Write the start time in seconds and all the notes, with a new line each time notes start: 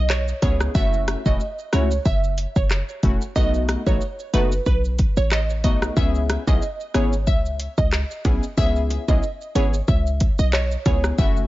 Already playing: B1
0.10 C#5, cross-stick, clap, shaker
0.28 shaker
0.42 C#2 B3 C#4 E4 G#4 C#5, kick, closed hi-hat, shaker
0.61 cross-stick, shaker
0.75 F#1 A3 C#4 E4 F#4 E5, kick, shaker
0.93 shaker
1.08 cross-stick, closed hi-hat, shaker
1.26 E1 A3 C#4 E4 F#4 D#5, kick, shaker
1.40 shaker
1.59 shaker
1.72 C#2 A3 C#4 E4 F#4 C#5, cross-stick, closed hi-hat, shaker
1.91 shaker
2.05 F#1 E5, kick, shaker
2.24 shaker
2.38 closed hi-hat, shaker
2.56 F#1 C#5, kick, shaker
2.71 cross-stick, clap, shaker
2.89 shaker
3.03 E1 A3 C#4 E4 F#4, kick, closed hi-hat, shaker
3.21 shaker
3.36 B1 A3 B3 D#4 F#4 D#5, kick, shaker
3.54 shaker
3.69 cross-stick, closed hi-hat, shaker
3.86 A1 A3 B3 D#4 F#4 C#5, kick, shaker
4.01 shaker
4.19 shaker
4.33 F#1 A3 B3 D#4 F#4 B4, closed hi-hat, shaker
4.52 shaker
4.66 B1 B4, kick, shaker
4.85 shaker
4.99 kick, closed hi-hat, shaker
5.17 A1 C#5, shaker
5.31 D#5, cross-stick, clap, shaker
5.50 shaker
5.64 B1 A3 B3 D#4 F#4 D#5, kick, closed hi-hat, shaker
5.82 cross-stick, shaker
5.96 C#2 B3 C#4 E4 G#4 E5, kick, shaker
6.15 shaker
6.30 cross-stick, closed hi-hat, high bongo, shaker
6.47 B1 B3 C#4 E4 G#4 D#5, kick, high bongo, shaker
6.62 shaker
6.80 shaker
6.94 G#1 B3 C#4 E4 G#4 C#5, cross-stick, closed hi-hat, shaker
7.13 shaker
7.27 C#2 E5, kick, shaker
7.46 shaker
7.60 closed hi-hat, shaker
7.78 C#2 D#5, kick, shaker
7.92 cross-stick, clap, shaker
8.11 shaker
8.25 B1 B3 C#4 E4 G#4, kick, closed hi-hat, high bongo, low bongo, shaker
8.43 shaker
8.57 C#2 B3 C#4 E4 G#4 E5, kick, shaker
8.76 shaker
8.90 closed hi-hat, high bongo, shaker
9.08 B1 B3 C#4 E4 G#4 D#5, kick, high bongo, shaker
9.23 shaker
9.41 shaker
9.55 G#1 B3 C#4 E4 G#4 C#5, closed hi-hat, shaker
9.74 shaker
9.88 C#2 E5, kick, shaker
10.07 shaker
10.20 kick, closed hi-hat, shaker
10.39 B1 D#5, shaker
10.53 C#5, cross-stick, clap, shaker
10.72 shaker
10.86 C#2 B3 C#4 E4 G#4 C#5, kick, closed hi-hat, high bongo, low bongo, shaker
11.04 cross-stick, shaker
11.18 F#1 A3 C#4 E4 F#4 E5, kick, shaker
11.37 shaker